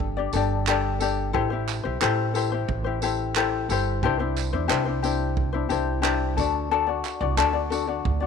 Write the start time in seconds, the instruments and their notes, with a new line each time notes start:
Already playing: upright bass G1, ukulele D4 G4 A4 D5
0.00 kick
0.17 ukulele D4 G4 D5
0.33 upright bass G1, ukulele D4 G4 A4 D5, tambourine
0.67 ukulele D4 G4 A4, clap
0.69 ukulele D5, clap
1.00 ukulele D4 G4 A4 D5, tambourine
1.33 upright bass A1, ukulele E4 G4 A4 C5, kick
1.50 ukulele E4 G4 C5
1.68 clap, tambourine
1.83 upright bass B1, ukulele E4 G4 C5
2.01 upright bass A1, ukulele E4 G4 A4 C5, clap
2.34 ukulele E4 G4 A4 C5, tambourine
2.52 ukulele E4 G4 C5
2.68 upright bass A1, kick
2.84 ukulele E4 G4 C5
3.02 ukulele E4 G4 A4 C5, tambourine
3.35 ukulele E4 G4 A4, clap
3.37 ukulele C5, clap
3.69 upright bass G1, ukulele E4 G4 A4 C5, tambourine
4.03 upright bass C2, ukulele D4 E4 G4 C5, kick
4.19 ukulele D4 E4 C5
4.37 clap, tambourine
4.53 upright bass E2, ukulele D4 E4 C5
4.68 upright bass C2, ukulele D4 E4 G4 C5, clap
4.86 ukulele D4 E4 C5
5.03 ukulele D4 E4 G4 C5, tambourine
5.37 kick
5.53 ukulele D4 E4 C5
5.69 upright bass C2, ukulele D4 E4 G4 C5, tambourine
6.02 ukulele D4 E4 G4 C5, clap
6.37 upright bass D2, ukulele D4 F#4 A4 D5, kick, tambourine
6.71 ukulele D4 F#4 A4 D5
6.87 ukulele D4 F#4 D5
7.05 clap, tambourine
7.21 upright bass C2, ukulele D4 F#4 D5
7.37 upright bass D2, ukulele D4 F#4 A4 D5, clap
7.53 ukulele D4 F#4 D5
7.70 ukulele D4 F#4 A4 D5, tambourine
7.87 ukulele D4 F#4 D5
8.05 upright bass D2, kick
8.20 ukulele D4 F#4 D5